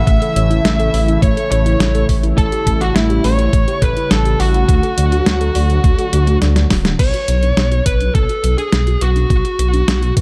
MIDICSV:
0, 0, Header, 1, 7, 480
1, 0, Start_track
1, 0, Key_signature, 2, "minor"
1, 0, Tempo, 576923
1, 59, Time_signature, 4, 2, 24, 8
1, 8500, End_track
2, 0, Start_track
2, 0, Title_t, "Digital synth lead"
2, 0, Program_c, 0, 84
2, 57, Note_on_c, 0, 88, 117
2, 1012, Note_off_c, 0, 88, 0
2, 1017, Note_on_c, 0, 85, 90
2, 1241, Note_off_c, 0, 85, 0
2, 1256, Note_on_c, 0, 85, 84
2, 1704, Note_off_c, 0, 85, 0
2, 1976, Note_on_c, 0, 81, 106
2, 2332, Note_off_c, 0, 81, 0
2, 2337, Note_on_c, 0, 78, 96
2, 2453, Note_off_c, 0, 78, 0
2, 2458, Note_on_c, 0, 76, 98
2, 2691, Note_off_c, 0, 76, 0
2, 2696, Note_on_c, 0, 85, 124
2, 3177, Note_off_c, 0, 85, 0
2, 3182, Note_on_c, 0, 83, 101
2, 3417, Note_off_c, 0, 83, 0
2, 3422, Note_on_c, 0, 81, 107
2, 3654, Note_off_c, 0, 81, 0
2, 3659, Note_on_c, 0, 78, 98
2, 5306, Note_off_c, 0, 78, 0
2, 8500, End_track
3, 0, Start_track
3, 0, Title_t, "Lead electric guitar"
3, 0, Program_c, 1, 29
3, 57, Note_on_c, 1, 76, 108
3, 1017, Note_off_c, 1, 76, 0
3, 1020, Note_on_c, 1, 73, 88
3, 1243, Note_off_c, 1, 73, 0
3, 1259, Note_on_c, 1, 73, 85
3, 1706, Note_off_c, 1, 73, 0
3, 1976, Note_on_c, 1, 69, 109
3, 2337, Note_on_c, 1, 66, 89
3, 2349, Note_off_c, 1, 69, 0
3, 2457, Note_off_c, 1, 66, 0
3, 2460, Note_on_c, 1, 64, 101
3, 2700, Note_on_c, 1, 73, 113
3, 2707, Note_off_c, 1, 64, 0
3, 3180, Note_on_c, 1, 71, 107
3, 3194, Note_off_c, 1, 73, 0
3, 3418, Note_off_c, 1, 71, 0
3, 3422, Note_on_c, 1, 69, 97
3, 3659, Note_on_c, 1, 66, 94
3, 3668, Note_off_c, 1, 69, 0
3, 5306, Note_off_c, 1, 66, 0
3, 5820, Note_on_c, 1, 73, 113
3, 6507, Note_off_c, 1, 73, 0
3, 6541, Note_on_c, 1, 71, 91
3, 6776, Note_off_c, 1, 71, 0
3, 6779, Note_on_c, 1, 69, 88
3, 7137, Note_off_c, 1, 69, 0
3, 7140, Note_on_c, 1, 68, 84
3, 7501, Note_on_c, 1, 66, 83
3, 7511, Note_off_c, 1, 68, 0
3, 8427, Note_off_c, 1, 66, 0
3, 8500, End_track
4, 0, Start_track
4, 0, Title_t, "Synth arpeggio sound"
4, 0, Program_c, 2, 84
4, 58, Note_on_c, 2, 57, 83
4, 118, Note_off_c, 2, 57, 0
4, 179, Note_on_c, 2, 69, 100
4, 279, Note_off_c, 2, 69, 0
4, 299, Note_on_c, 2, 73, 75
4, 359, Note_off_c, 2, 73, 0
4, 418, Note_on_c, 2, 64, 73
4, 518, Note_off_c, 2, 64, 0
4, 540, Note_on_c, 2, 57, 89
4, 599, Note_off_c, 2, 57, 0
4, 659, Note_on_c, 2, 69, 103
4, 759, Note_off_c, 2, 69, 0
4, 779, Note_on_c, 2, 73, 85
4, 839, Note_off_c, 2, 73, 0
4, 899, Note_on_c, 2, 64, 76
4, 999, Note_off_c, 2, 64, 0
4, 1019, Note_on_c, 2, 57, 86
4, 1079, Note_off_c, 2, 57, 0
4, 1139, Note_on_c, 2, 69, 106
4, 1238, Note_off_c, 2, 69, 0
4, 1260, Note_on_c, 2, 73, 69
4, 1319, Note_off_c, 2, 73, 0
4, 1379, Note_on_c, 2, 64, 78
4, 1478, Note_off_c, 2, 64, 0
4, 1497, Note_on_c, 2, 57, 80
4, 1558, Note_off_c, 2, 57, 0
4, 1618, Note_on_c, 2, 69, 98
4, 1718, Note_off_c, 2, 69, 0
4, 1737, Note_on_c, 2, 73, 80
4, 1798, Note_off_c, 2, 73, 0
4, 1857, Note_on_c, 2, 64, 75
4, 1958, Note_off_c, 2, 64, 0
4, 1979, Note_on_c, 2, 57, 81
4, 2039, Note_off_c, 2, 57, 0
4, 2098, Note_on_c, 2, 67, 106
4, 2198, Note_off_c, 2, 67, 0
4, 2218, Note_on_c, 2, 69, 77
4, 2278, Note_off_c, 2, 69, 0
4, 2338, Note_on_c, 2, 64, 73
4, 2438, Note_off_c, 2, 64, 0
4, 2457, Note_on_c, 2, 57, 88
4, 2518, Note_off_c, 2, 57, 0
4, 2577, Note_on_c, 2, 67, 104
4, 2677, Note_off_c, 2, 67, 0
4, 2699, Note_on_c, 2, 69, 82
4, 2759, Note_off_c, 2, 69, 0
4, 2819, Note_on_c, 2, 64, 78
4, 2919, Note_off_c, 2, 64, 0
4, 2938, Note_on_c, 2, 57, 83
4, 2998, Note_off_c, 2, 57, 0
4, 3059, Note_on_c, 2, 67, 105
4, 3159, Note_off_c, 2, 67, 0
4, 3179, Note_on_c, 2, 69, 73
4, 3239, Note_off_c, 2, 69, 0
4, 3300, Note_on_c, 2, 64, 76
4, 3399, Note_off_c, 2, 64, 0
4, 3418, Note_on_c, 2, 57, 77
4, 3478, Note_off_c, 2, 57, 0
4, 3537, Note_on_c, 2, 67, 103
4, 3638, Note_off_c, 2, 67, 0
4, 3658, Note_on_c, 2, 69, 79
4, 3719, Note_off_c, 2, 69, 0
4, 3779, Note_on_c, 2, 64, 78
4, 3879, Note_off_c, 2, 64, 0
4, 3898, Note_on_c, 2, 57, 87
4, 3958, Note_off_c, 2, 57, 0
4, 4019, Note_on_c, 2, 69, 108
4, 4119, Note_off_c, 2, 69, 0
4, 4139, Note_on_c, 2, 74, 75
4, 4199, Note_off_c, 2, 74, 0
4, 4259, Note_on_c, 2, 66, 74
4, 4359, Note_off_c, 2, 66, 0
4, 4379, Note_on_c, 2, 57, 84
4, 4439, Note_off_c, 2, 57, 0
4, 4498, Note_on_c, 2, 69, 104
4, 4598, Note_off_c, 2, 69, 0
4, 4620, Note_on_c, 2, 74, 84
4, 4679, Note_off_c, 2, 74, 0
4, 4740, Note_on_c, 2, 66, 74
4, 4839, Note_off_c, 2, 66, 0
4, 4858, Note_on_c, 2, 57, 84
4, 4918, Note_off_c, 2, 57, 0
4, 4977, Note_on_c, 2, 69, 109
4, 5078, Note_off_c, 2, 69, 0
4, 5099, Note_on_c, 2, 74, 70
4, 5159, Note_off_c, 2, 74, 0
4, 5217, Note_on_c, 2, 57, 106
4, 5278, Note_off_c, 2, 57, 0
4, 5339, Note_on_c, 2, 74, 80
4, 5438, Note_off_c, 2, 74, 0
4, 5458, Note_on_c, 2, 74, 100
4, 5558, Note_off_c, 2, 74, 0
4, 5579, Note_on_c, 2, 66, 79
4, 5679, Note_off_c, 2, 66, 0
4, 5700, Note_on_c, 2, 62, 74
4, 5799, Note_off_c, 2, 62, 0
4, 5819, Note_on_c, 2, 59, 82
4, 5879, Note_off_c, 2, 59, 0
4, 5939, Note_on_c, 2, 66, 104
4, 6039, Note_off_c, 2, 66, 0
4, 6060, Note_on_c, 2, 71, 70
4, 6119, Note_off_c, 2, 71, 0
4, 6181, Note_on_c, 2, 62, 73
4, 6280, Note_off_c, 2, 62, 0
4, 6301, Note_on_c, 2, 59, 83
4, 6360, Note_off_c, 2, 59, 0
4, 6422, Note_on_c, 2, 66, 100
4, 6520, Note_off_c, 2, 66, 0
4, 6661, Note_on_c, 2, 62, 76
4, 6760, Note_off_c, 2, 62, 0
4, 6781, Note_on_c, 2, 59, 80
4, 6840, Note_off_c, 2, 59, 0
4, 6901, Note_on_c, 2, 66, 98
4, 7000, Note_off_c, 2, 66, 0
4, 7021, Note_on_c, 2, 71, 69
4, 7080, Note_off_c, 2, 71, 0
4, 7141, Note_on_c, 2, 62, 74
4, 7239, Note_off_c, 2, 62, 0
4, 7260, Note_on_c, 2, 59, 76
4, 7319, Note_off_c, 2, 59, 0
4, 7381, Note_on_c, 2, 66, 96
4, 7480, Note_off_c, 2, 66, 0
4, 7501, Note_on_c, 2, 71, 79
4, 7560, Note_off_c, 2, 71, 0
4, 7620, Note_on_c, 2, 62, 70
4, 7719, Note_off_c, 2, 62, 0
4, 7741, Note_on_c, 2, 59, 81
4, 7800, Note_off_c, 2, 59, 0
4, 7860, Note_on_c, 2, 66, 102
4, 7959, Note_off_c, 2, 66, 0
4, 7980, Note_on_c, 2, 71, 74
4, 8039, Note_off_c, 2, 71, 0
4, 8099, Note_on_c, 2, 62, 75
4, 8199, Note_off_c, 2, 62, 0
4, 8218, Note_on_c, 2, 59, 85
4, 8278, Note_off_c, 2, 59, 0
4, 8339, Note_on_c, 2, 66, 98
4, 8438, Note_off_c, 2, 66, 0
4, 8457, Note_on_c, 2, 71, 79
4, 8500, Note_off_c, 2, 71, 0
4, 8500, End_track
5, 0, Start_track
5, 0, Title_t, "Analog synth pad"
5, 0, Program_c, 3, 89
5, 0, Note_on_c, 3, 49, 82
5, 0, Note_on_c, 3, 52, 73
5, 0, Note_on_c, 3, 57, 75
5, 0, Note_on_c, 3, 64, 91
5, 1946, Note_off_c, 3, 52, 0
5, 1978, Note_on_c, 3, 55, 75
5, 3866, Note_off_c, 3, 49, 0
5, 3866, Note_off_c, 3, 64, 0
5, 3880, Note_off_c, 3, 55, 0
5, 3899, Note_on_c, 3, 50, 79
5, 3899, Note_on_c, 3, 54, 74
5, 3900, Note_on_c, 3, 66, 86
5, 5785, Note_off_c, 3, 57, 0
5, 5800, Note_off_c, 3, 50, 0
5, 5800, Note_off_c, 3, 54, 0
5, 5801, Note_off_c, 3, 66, 0
5, 8500, End_track
6, 0, Start_track
6, 0, Title_t, "Detuned saw bass"
6, 0, Program_c, 4, 39
6, 58, Note_on_c, 4, 33, 97
6, 159, Note_off_c, 4, 33, 0
6, 299, Note_on_c, 4, 33, 88
6, 500, Note_off_c, 4, 33, 0
6, 539, Note_on_c, 4, 33, 89
6, 740, Note_off_c, 4, 33, 0
6, 778, Note_on_c, 4, 33, 102
6, 980, Note_off_c, 4, 33, 0
6, 1018, Note_on_c, 4, 33, 95
6, 1119, Note_off_c, 4, 33, 0
6, 1259, Note_on_c, 4, 33, 80
6, 1460, Note_off_c, 4, 33, 0
6, 1497, Note_on_c, 4, 33, 97
6, 1699, Note_off_c, 4, 33, 0
6, 1738, Note_on_c, 4, 33, 103
6, 1939, Note_off_c, 4, 33, 0
6, 1978, Note_on_c, 4, 33, 105
6, 2079, Note_off_c, 4, 33, 0
6, 2218, Note_on_c, 4, 33, 103
6, 2419, Note_off_c, 4, 33, 0
6, 2457, Note_on_c, 4, 33, 103
6, 2659, Note_off_c, 4, 33, 0
6, 2698, Note_on_c, 4, 33, 101
6, 2900, Note_off_c, 4, 33, 0
6, 2939, Note_on_c, 4, 33, 91
6, 3040, Note_off_c, 4, 33, 0
6, 3178, Note_on_c, 4, 33, 100
6, 3279, Note_off_c, 4, 33, 0
6, 3420, Note_on_c, 4, 33, 94
6, 3621, Note_off_c, 4, 33, 0
6, 3660, Note_on_c, 4, 33, 88
6, 3861, Note_off_c, 4, 33, 0
6, 3898, Note_on_c, 4, 38, 95
6, 3999, Note_off_c, 4, 38, 0
6, 4141, Note_on_c, 4, 38, 94
6, 4341, Note_off_c, 4, 38, 0
6, 4381, Note_on_c, 4, 38, 88
6, 4581, Note_off_c, 4, 38, 0
6, 4621, Note_on_c, 4, 38, 107
6, 4821, Note_off_c, 4, 38, 0
6, 4859, Note_on_c, 4, 38, 96
6, 4959, Note_off_c, 4, 38, 0
6, 5100, Note_on_c, 4, 38, 86
6, 5300, Note_off_c, 4, 38, 0
6, 5341, Note_on_c, 4, 38, 91
6, 5541, Note_off_c, 4, 38, 0
6, 5579, Note_on_c, 4, 26, 98
6, 5780, Note_off_c, 4, 26, 0
6, 5819, Note_on_c, 4, 35, 101
6, 5920, Note_off_c, 4, 35, 0
6, 6058, Note_on_c, 4, 35, 99
6, 6260, Note_off_c, 4, 35, 0
6, 6298, Note_on_c, 4, 35, 96
6, 6499, Note_off_c, 4, 35, 0
6, 6540, Note_on_c, 4, 35, 103
6, 6740, Note_off_c, 4, 35, 0
6, 6779, Note_on_c, 4, 35, 89
6, 6879, Note_off_c, 4, 35, 0
6, 7019, Note_on_c, 4, 35, 98
6, 7120, Note_off_c, 4, 35, 0
6, 7258, Note_on_c, 4, 35, 85
6, 7460, Note_off_c, 4, 35, 0
6, 7499, Note_on_c, 4, 35, 85
6, 7700, Note_off_c, 4, 35, 0
6, 7739, Note_on_c, 4, 35, 92
6, 7840, Note_off_c, 4, 35, 0
6, 7978, Note_on_c, 4, 35, 86
6, 8179, Note_off_c, 4, 35, 0
6, 8219, Note_on_c, 4, 35, 82
6, 8420, Note_off_c, 4, 35, 0
6, 8459, Note_on_c, 4, 35, 102
6, 8500, Note_off_c, 4, 35, 0
6, 8500, End_track
7, 0, Start_track
7, 0, Title_t, "Drums"
7, 58, Note_on_c, 9, 36, 118
7, 61, Note_on_c, 9, 42, 65
7, 141, Note_off_c, 9, 36, 0
7, 144, Note_off_c, 9, 42, 0
7, 182, Note_on_c, 9, 42, 37
7, 265, Note_off_c, 9, 42, 0
7, 302, Note_on_c, 9, 42, 93
7, 385, Note_off_c, 9, 42, 0
7, 421, Note_on_c, 9, 42, 38
7, 505, Note_off_c, 9, 42, 0
7, 541, Note_on_c, 9, 38, 125
7, 541, Note_on_c, 9, 42, 67
7, 624, Note_off_c, 9, 38, 0
7, 624, Note_off_c, 9, 42, 0
7, 662, Note_on_c, 9, 42, 38
7, 746, Note_off_c, 9, 42, 0
7, 782, Note_on_c, 9, 46, 80
7, 865, Note_off_c, 9, 46, 0
7, 902, Note_on_c, 9, 42, 35
7, 985, Note_off_c, 9, 42, 0
7, 1018, Note_on_c, 9, 36, 116
7, 1020, Note_on_c, 9, 42, 64
7, 1101, Note_off_c, 9, 36, 0
7, 1103, Note_off_c, 9, 42, 0
7, 1142, Note_on_c, 9, 42, 39
7, 1225, Note_off_c, 9, 42, 0
7, 1262, Note_on_c, 9, 42, 87
7, 1345, Note_off_c, 9, 42, 0
7, 1381, Note_on_c, 9, 42, 39
7, 1465, Note_off_c, 9, 42, 0
7, 1500, Note_on_c, 9, 38, 115
7, 1500, Note_on_c, 9, 42, 66
7, 1584, Note_off_c, 9, 38, 0
7, 1584, Note_off_c, 9, 42, 0
7, 1621, Note_on_c, 9, 42, 40
7, 1704, Note_off_c, 9, 42, 0
7, 1738, Note_on_c, 9, 36, 63
7, 1739, Note_on_c, 9, 46, 77
7, 1821, Note_off_c, 9, 36, 0
7, 1823, Note_off_c, 9, 46, 0
7, 1859, Note_on_c, 9, 42, 37
7, 1943, Note_off_c, 9, 42, 0
7, 1978, Note_on_c, 9, 36, 109
7, 1980, Note_on_c, 9, 42, 67
7, 2061, Note_off_c, 9, 36, 0
7, 2063, Note_off_c, 9, 42, 0
7, 2099, Note_on_c, 9, 42, 41
7, 2182, Note_off_c, 9, 42, 0
7, 2218, Note_on_c, 9, 36, 61
7, 2220, Note_on_c, 9, 42, 90
7, 2301, Note_off_c, 9, 36, 0
7, 2303, Note_off_c, 9, 42, 0
7, 2340, Note_on_c, 9, 42, 40
7, 2423, Note_off_c, 9, 42, 0
7, 2460, Note_on_c, 9, 38, 118
7, 2460, Note_on_c, 9, 42, 67
7, 2543, Note_off_c, 9, 38, 0
7, 2543, Note_off_c, 9, 42, 0
7, 2579, Note_on_c, 9, 42, 40
7, 2662, Note_off_c, 9, 42, 0
7, 2698, Note_on_c, 9, 46, 83
7, 2781, Note_off_c, 9, 46, 0
7, 2818, Note_on_c, 9, 42, 38
7, 2901, Note_off_c, 9, 42, 0
7, 2938, Note_on_c, 9, 36, 109
7, 2939, Note_on_c, 9, 42, 62
7, 3021, Note_off_c, 9, 36, 0
7, 3023, Note_off_c, 9, 42, 0
7, 3061, Note_on_c, 9, 42, 39
7, 3144, Note_off_c, 9, 42, 0
7, 3178, Note_on_c, 9, 36, 107
7, 3179, Note_on_c, 9, 42, 90
7, 3261, Note_off_c, 9, 36, 0
7, 3262, Note_off_c, 9, 42, 0
7, 3300, Note_on_c, 9, 42, 40
7, 3383, Note_off_c, 9, 42, 0
7, 3418, Note_on_c, 9, 38, 113
7, 3418, Note_on_c, 9, 42, 63
7, 3502, Note_off_c, 9, 38, 0
7, 3502, Note_off_c, 9, 42, 0
7, 3540, Note_on_c, 9, 42, 39
7, 3623, Note_off_c, 9, 42, 0
7, 3660, Note_on_c, 9, 46, 82
7, 3743, Note_off_c, 9, 46, 0
7, 3780, Note_on_c, 9, 42, 39
7, 3863, Note_off_c, 9, 42, 0
7, 3898, Note_on_c, 9, 36, 113
7, 3900, Note_on_c, 9, 42, 69
7, 3981, Note_off_c, 9, 36, 0
7, 3983, Note_off_c, 9, 42, 0
7, 4021, Note_on_c, 9, 42, 42
7, 4104, Note_off_c, 9, 42, 0
7, 4141, Note_on_c, 9, 42, 97
7, 4224, Note_off_c, 9, 42, 0
7, 4261, Note_on_c, 9, 42, 42
7, 4344, Note_off_c, 9, 42, 0
7, 4380, Note_on_c, 9, 38, 121
7, 4380, Note_on_c, 9, 42, 72
7, 4463, Note_off_c, 9, 38, 0
7, 4463, Note_off_c, 9, 42, 0
7, 4500, Note_on_c, 9, 42, 42
7, 4583, Note_off_c, 9, 42, 0
7, 4619, Note_on_c, 9, 46, 87
7, 4702, Note_off_c, 9, 46, 0
7, 4740, Note_on_c, 9, 42, 40
7, 4823, Note_off_c, 9, 42, 0
7, 4858, Note_on_c, 9, 36, 117
7, 4859, Note_on_c, 9, 42, 66
7, 4942, Note_off_c, 9, 36, 0
7, 4942, Note_off_c, 9, 42, 0
7, 4980, Note_on_c, 9, 42, 40
7, 5063, Note_off_c, 9, 42, 0
7, 5100, Note_on_c, 9, 42, 99
7, 5183, Note_off_c, 9, 42, 0
7, 5219, Note_on_c, 9, 42, 40
7, 5302, Note_off_c, 9, 42, 0
7, 5339, Note_on_c, 9, 38, 63
7, 5339, Note_on_c, 9, 42, 69
7, 5422, Note_off_c, 9, 38, 0
7, 5422, Note_off_c, 9, 42, 0
7, 5459, Note_on_c, 9, 38, 62
7, 5459, Note_on_c, 9, 42, 41
7, 5542, Note_off_c, 9, 38, 0
7, 5542, Note_off_c, 9, 42, 0
7, 5578, Note_on_c, 9, 38, 84
7, 5578, Note_on_c, 9, 46, 82
7, 5579, Note_on_c, 9, 36, 61
7, 5662, Note_off_c, 9, 36, 0
7, 5662, Note_off_c, 9, 38, 0
7, 5662, Note_off_c, 9, 46, 0
7, 5699, Note_on_c, 9, 38, 84
7, 5699, Note_on_c, 9, 42, 42
7, 5782, Note_off_c, 9, 38, 0
7, 5782, Note_off_c, 9, 42, 0
7, 5819, Note_on_c, 9, 36, 111
7, 5819, Note_on_c, 9, 42, 66
7, 5819, Note_on_c, 9, 49, 96
7, 5902, Note_off_c, 9, 36, 0
7, 5902, Note_off_c, 9, 42, 0
7, 5902, Note_off_c, 9, 49, 0
7, 5938, Note_on_c, 9, 42, 39
7, 6021, Note_off_c, 9, 42, 0
7, 6058, Note_on_c, 9, 42, 88
7, 6141, Note_off_c, 9, 42, 0
7, 6179, Note_on_c, 9, 42, 41
7, 6262, Note_off_c, 9, 42, 0
7, 6300, Note_on_c, 9, 38, 115
7, 6300, Note_on_c, 9, 42, 67
7, 6383, Note_off_c, 9, 38, 0
7, 6383, Note_off_c, 9, 42, 0
7, 6420, Note_on_c, 9, 42, 40
7, 6503, Note_off_c, 9, 42, 0
7, 6539, Note_on_c, 9, 36, 95
7, 6539, Note_on_c, 9, 42, 93
7, 6622, Note_off_c, 9, 36, 0
7, 6622, Note_off_c, 9, 42, 0
7, 6660, Note_on_c, 9, 42, 36
7, 6743, Note_off_c, 9, 42, 0
7, 6779, Note_on_c, 9, 36, 118
7, 6780, Note_on_c, 9, 42, 63
7, 6862, Note_off_c, 9, 36, 0
7, 6863, Note_off_c, 9, 42, 0
7, 6900, Note_on_c, 9, 42, 40
7, 6983, Note_off_c, 9, 42, 0
7, 7020, Note_on_c, 9, 42, 94
7, 7103, Note_off_c, 9, 42, 0
7, 7140, Note_on_c, 9, 42, 39
7, 7224, Note_off_c, 9, 42, 0
7, 7259, Note_on_c, 9, 38, 109
7, 7259, Note_on_c, 9, 42, 67
7, 7342, Note_off_c, 9, 38, 0
7, 7342, Note_off_c, 9, 42, 0
7, 7379, Note_on_c, 9, 42, 39
7, 7462, Note_off_c, 9, 42, 0
7, 7500, Note_on_c, 9, 42, 94
7, 7583, Note_off_c, 9, 42, 0
7, 7620, Note_on_c, 9, 42, 38
7, 7703, Note_off_c, 9, 42, 0
7, 7739, Note_on_c, 9, 36, 114
7, 7741, Note_on_c, 9, 42, 66
7, 7822, Note_off_c, 9, 36, 0
7, 7824, Note_off_c, 9, 42, 0
7, 7861, Note_on_c, 9, 42, 40
7, 7944, Note_off_c, 9, 42, 0
7, 7981, Note_on_c, 9, 42, 94
7, 8064, Note_off_c, 9, 42, 0
7, 8100, Note_on_c, 9, 42, 39
7, 8183, Note_off_c, 9, 42, 0
7, 8221, Note_on_c, 9, 38, 122
7, 8221, Note_on_c, 9, 42, 70
7, 8304, Note_off_c, 9, 38, 0
7, 8304, Note_off_c, 9, 42, 0
7, 8341, Note_on_c, 9, 42, 40
7, 8424, Note_off_c, 9, 42, 0
7, 8459, Note_on_c, 9, 36, 103
7, 8460, Note_on_c, 9, 42, 93
7, 8500, Note_off_c, 9, 36, 0
7, 8500, Note_off_c, 9, 42, 0
7, 8500, End_track
0, 0, End_of_file